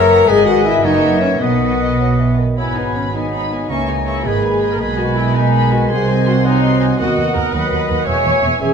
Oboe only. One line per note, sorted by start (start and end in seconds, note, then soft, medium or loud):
0.00 0.31 E5 medium
0.29 0.86 D#5 medium
0.85 1.43 C#5 medium
1.42 2.39 D#5 medium
2.57 3.10 G#5 soft
3.15 3.72 B5 soft
3.70 4.28 A#5 soft
4.27 4.81 G#5 soft
4.82 5.37 G#5 medium
5.36 5.92 B5 medium
5.90 6.44 G#5 medium
6.44 6.98 F#5 medium
7.00 7.50 F#5 medium
7.54 8.08 F#5 medium
8.07 8.60 E5 medium
8.61 8.74 E5 medium